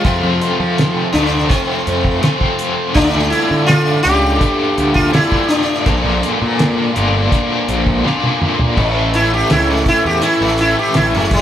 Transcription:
Already playing: sitar F4
0.04 overdriven electric guitar F2 C3 F3 A3 C4 F4, picked electric bass F2, transistor combo organ C5 A5 C6, kick, closed hi-hat
0.24 picked electric bass F2
0.42 closed hi-hat
0.60 picked electric bass F3
0.78 snare, closed hi-hat
1.13 picked electric bass D2, overdriven electric guitar F2 C3 F3 A3 C4 F4, sitar D4, closed hi-hat
1.49 sitar C4, kick, closed hi-hat
1.87 picked electric bass F2, closed hi-hat
2.05 kick
2.22 overdriven electric guitar F2 C3 F3 A3 C4 F4, snare, closed hi-hat
2.41 kick
2.59 closed hi-hat
2.94 picked electric bass D2, overdriven electric guitar D3 A3 D4 F4, sitar D4, transistor combo organ D5 A5 D6, kick, closed hi-hat
3.14 picked electric bass D2
3.30 sitar E4, closed hi-hat
3.51 picked electric bass D3
3.66 sitar F4, snare, closed hi-hat
4.03 picked electric bass C#2, overdriven electric guitar D3 A3 D4 F4, sitar G4, closed hi-hat
4.41 kick, closed hi-hat
4.78 picked electric bass D2, closed hi-hat
4.94 sitar F4, kick
5.13 overdriven electric guitar D3 A3 D4 F4, sitar E4, snare, closed hi-hat
5.32 kick
5.48 sitar D4, closed hi-hat
5.85 picked electric bass A#1, overdriven electric guitar A#2 D3 A#3 D4 F4, transistor combo organ A#5 C6, kick, closed hi-hat
6.05 picked electric bass A#1
6.23 closed hi-hat
6.42 picked electric bass A#2
6.59 snare, closed hi-hat
6.94 picked electric bass G1, overdriven electric guitar A#2 D3 A#3 D4 F4, closed hi-hat
7.32 kick, closed hi-hat
7.69 picked electric bass A#1, closed hi-hat
7.87 kick
8.03 overdriven electric guitar A#2 D3 A#3 D4 F4, snare
8.24 high tom
8.42 mid tom
8.59 floor tom
8.76 picked electric bass A1, overdriven electric guitar A2 E3 A3 C#4 E4, transistor combo organ C#5 E5 A5 C#6, kick, crash
9.14 sitar E4, closed hi-hat
9.34 sitar G4
9.50 picked electric bass C#2, sitar E4, snare, closed hi-hat
9.70 sitar A3
9.86 sitar E4, kick, closed hi-hat
10.05 picked electric bass E2, sitar G4
10.21 overdriven electric guitar A2 E3 A3 C#4 E4, sitar E4, closed hi-hat
10.41 picked electric bass A1, sitar A3
10.58 sitar E4, closed hi-hat
10.79 sitar G4
10.94 picked electric bass A1, sitar E4, snare, closed hi-hat
11.14 picked electric bass F#1, sitar A3
11.31 sitar G3, kick, closed hi-hat

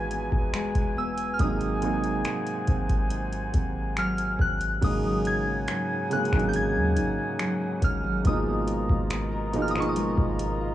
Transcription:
Already playing: 808-style bass G#1, nylon-string guitar E3 G#3 D#4, grand piano E3 F#3 G#3 B3 F4 F#4, woodwind section B4 G#5, synth bell G#6
0.11 nylon-string guitar B3, closed hi-hat
0.32 808-style bass E1, kick
0.54 nylon-string guitar G#3, finger snap, closed hi-hat
0.75 808-style bass E1, kick, closed hi-hat
0.97 nylon-string guitar B3, synth bell E6
1.18 closed hi-hat
1.34 synth bell F6
1.39 808-style bass G#1, nylon-string guitar G#2 D#4, grand piano C3 F#3 G#3 A#3 D#4, synth bell D#6, kick, closed hi-hat
1.61 closed hi-hat
1.82 grand piano C3 F#3 G#3 A#3 D#4, nylon-string guitar C4, closed hi-hat
2.04 closed hi-hat
2.25 nylon-string guitar F#3, finger snap, closed hi-hat
2.47 closed hi-hat
2.67 808-style bass G#1, nylon-string guitar C4, kick, closed hi-hat
2.89 kick, closed hi-hat
3.10 nylon-string guitar D#4, closed hi-hat
3.33 closed hi-hat
3.54 808-style bass G#1, nylon-string guitar C4, kick, closed hi-hat
3.97 nylon-string guitar F#3, synth bell F6, finger snap, closed hi-hat
4.18 closed hi-hat
4.39 808-style bass G#1, nylon-string guitar C4, synth bell F#6, kick
4.61 closed hi-hat
4.81 808-style bass G#1, nylon-string guitar G#2 D#4, grand piano C#3 F#3 G#3 A#3 D#4, woodwind section D#4 C#5 F#5 G#5, synth bell D#6, kick, closed hi-hat, crash
5.04 nylon-string guitar F#3
5.25 nylon-string guitar D#4, synth bell G#6, closed hi-hat
5.47 nylon-string guitar C#4
5.68 nylon-string guitar F#3, finger snap, closed hi-hat
5.90 nylon-string guitar D#4
6.10 grand piano C#3 F#3 G#3 A#3 C#4, nylon-string guitar C#4, synth bell F#6, closed hi-hat
6.25 closed hi-hat
6.32 808-style bass G#1, grand piano C3 F#3 G#3 A#3 D#4, nylon-string guitar F#3, finger snap, kick
6.38 grand piano C#3, closed hi-hat
6.49 synth bell G6
6.53 nylon-string guitar G#2 D#4, synth bell G#6, closed hi-hat
6.75 808-style bass D#2, nylon-string guitar F#3
6.97 808-style bass G#1, nylon-string guitar D#4, closed hi-hat
7.18 nylon-string guitar C#4
7.39 nylon-string guitar F#3, finger snap, closed hi-hat
7.61 nylon-string guitar D#4
7.82 808-style bass G#1, nylon-string guitar C#4, synth bell F6, kick, closed hi-hat
8.04 nylon-string guitar F#3
8.24 808-style bass G#1, grand piano B2 F3 G#3 A#3 D#4, nylon-string guitar G#3 A#4, woodwind section F4 A#4 D#5 A#5, synth bell D#6, kick, closed hi-hat
8.47 nylon-string guitar B3
8.68 nylon-string guitar A#4, closed hi-hat
8.89 808-style bass G#1, nylon-string guitar F4, kick
9.10 nylon-string guitar B3, finger snap, closed hi-hat
9.32 nylon-string guitar A#4
9.53 grand piano B2 F3 G#3 A#3 D#4, nylon-string guitar F4, closed hi-hat
9.62 synth bell F6
9.68 synth bell D#6, closed hi-hat
9.74 grand piano B2 F3 G#3 A#3 D#4, nylon-string guitar B3, finger snap
9.80 synth bell C#6, closed hi-hat
9.89 synth bell D#6
9.96 nylon-string guitar G#3 A#4, closed hi-hat
10.18 808-style bass G#1, nylon-string guitar B3, kick
10.39 nylon-string guitar A#4, closed hi-hat
10.61 nylon-string guitar F4

